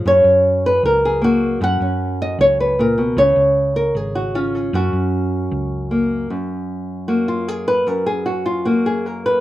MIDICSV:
0, 0, Header, 1, 3, 480
1, 0, Start_track
1, 0, Key_signature, 6, "major"
1, 0, Tempo, 391645
1, 69, Time_signature, 4, 2, 24, 8
1, 11526, End_track
2, 0, Start_track
2, 0, Title_t, "Nylon-string guitar"
2, 0, Program_c, 0, 24
2, 0, Note_on_c, 0, 61, 48
2, 70, Note_on_c, 0, 42, 76
2, 92, Note_on_c, 0, 73, 104
2, 796, Note_off_c, 0, 73, 0
2, 811, Note_on_c, 0, 71, 96
2, 848, Note_off_c, 0, 61, 0
2, 1036, Note_off_c, 0, 71, 0
2, 1048, Note_on_c, 0, 70, 97
2, 1290, Note_on_c, 0, 68, 94
2, 1489, Note_on_c, 0, 58, 67
2, 1513, Note_off_c, 0, 70, 0
2, 1523, Note_on_c, 0, 66, 102
2, 1943, Note_off_c, 0, 58, 0
2, 1964, Note_off_c, 0, 42, 0
2, 1979, Note_on_c, 0, 42, 70
2, 1989, Note_off_c, 0, 66, 0
2, 1992, Note_off_c, 0, 68, 0
2, 2005, Note_on_c, 0, 78, 115
2, 2226, Note_on_c, 0, 61, 48
2, 2713, Note_off_c, 0, 61, 0
2, 2718, Note_on_c, 0, 75, 101
2, 2944, Note_off_c, 0, 75, 0
2, 2946, Note_off_c, 0, 78, 0
2, 2950, Note_on_c, 0, 73, 107
2, 3180, Note_off_c, 0, 73, 0
2, 3192, Note_on_c, 0, 71, 93
2, 3411, Note_off_c, 0, 42, 0
2, 3420, Note_off_c, 0, 71, 0
2, 3421, Note_on_c, 0, 46, 63
2, 3437, Note_on_c, 0, 70, 95
2, 3650, Note_on_c, 0, 47, 65
2, 3654, Note_off_c, 0, 46, 0
2, 3888, Note_off_c, 0, 47, 0
2, 3891, Note_on_c, 0, 49, 74
2, 3899, Note_on_c, 0, 73, 110
2, 3902, Note_off_c, 0, 70, 0
2, 4609, Note_on_c, 0, 70, 100
2, 4850, Note_off_c, 0, 73, 0
2, 4859, Note_off_c, 0, 70, 0
2, 4859, Note_on_c, 0, 68, 99
2, 5091, Note_on_c, 0, 66, 84
2, 5327, Note_off_c, 0, 66, 0
2, 5331, Note_on_c, 0, 61, 64
2, 5334, Note_on_c, 0, 65, 92
2, 5559, Note_off_c, 0, 68, 0
2, 5574, Note_on_c, 0, 68, 94
2, 5776, Note_off_c, 0, 49, 0
2, 5807, Note_off_c, 0, 65, 0
2, 5808, Note_off_c, 0, 68, 0
2, 5811, Note_on_c, 0, 42, 74
2, 5824, Note_on_c, 0, 66, 86
2, 7238, Note_off_c, 0, 61, 0
2, 7243, Note_on_c, 0, 58, 61
2, 7697, Note_off_c, 0, 58, 0
2, 7710, Note_off_c, 0, 42, 0
2, 7725, Note_on_c, 0, 42, 65
2, 7736, Note_off_c, 0, 66, 0
2, 8677, Note_on_c, 0, 66, 80
2, 8683, Note_on_c, 0, 58, 60
2, 8924, Note_on_c, 0, 65, 82
2, 8925, Note_off_c, 0, 66, 0
2, 9172, Note_off_c, 0, 65, 0
2, 9172, Note_on_c, 0, 68, 78
2, 9409, Note_on_c, 0, 71, 102
2, 9414, Note_off_c, 0, 68, 0
2, 9623, Note_off_c, 0, 58, 0
2, 9629, Note_off_c, 0, 42, 0
2, 9642, Note_on_c, 0, 42, 71
2, 9652, Note_off_c, 0, 71, 0
2, 9652, Note_on_c, 0, 70, 84
2, 9883, Note_on_c, 0, 68, 94
2, 9894, Note_off_c, 0, 70, 0
2, 10120, Note_on_c, 0, 66, 78
2, 10132, Note_off_c, 0, 68, 0
2, 10364, Note_on_c, 0, 65, 86
2, 10371, Note_off_c, 0, 66, 0
2, 10606, Note_on_c, 0, 66, 77
2, 10614, Note_off_c, 0, 65, 0
2, 10616, Note_on_c, 0, 58, 66
2, 10856, Note_off_c, 0, 66, 0
2, 10858, Note_on_c, 0, 68, 83
2, 11102, Note_off_c, 0, 68, 0
2, 11103, Note_on_c, 0, 70, 82
2, 11341, Note_off_c, 0, 70, 0
2, 11346, Note_on_c, 0, 71, 88
2, 11526, Note_off_c, 0, 42, 0
2, 11526, Note_off_c, 0, 58, 0
2, 11526, Note_off_c, 0, 71, 0
2, 11526, End_track
3, 0, Start_track
3, 0, Title_t, "Fingered electric bass"
3, 0, Program_c, 1, 33
3, 66, Note_on_c, 1, 42, 100
3, 283, Note_off_c, 1, 42, 0
3, 296, Note_on_c, 1, 42, 86
3, 968, Note_off_c, 1, 42, 0
3, 1019, Note_on_c, 1, 37, 90
3, 1927, Note_off_c, 1, 37, 0
3, 1969, Note_on_c, 1, 42, 100
3, 2189, Note_off_c, 1, 42, 0
3, 2211, Note_on_c, 1, 42, 88
3, 2881, Note_off_c, 1, 42, 0
3, 2923, Note_on_c, 1, 37, 94
3, 3834, Note_off_c, 1, 37, 0
3, 3879, Note_on_c, 1, 37, 108
3, 4099, Note_off_c, 1, 37, 0
3, 4116, Note_on_c, 1, 37, 94
3, 4790, Note_off_c, 1, 37, 0
3, 4839, Note_on_c, 1, 32, 98
3, 5751, Note_off_c, 1, 32, 0
3, 5798, Note_on_c, 1, 42, 108
3, 6017, Note_off_c, 1, 42, 0
3, 6038, Note_on_c, 1, 42, 87
3, 6712, Note_off_c, 1, 42, 0
3, 6759, Note_on_c, 1, 37, 93
3, 7675, Note_off_c, 1, 37, 0
3, 11526, End_track
0, 0, End_of_file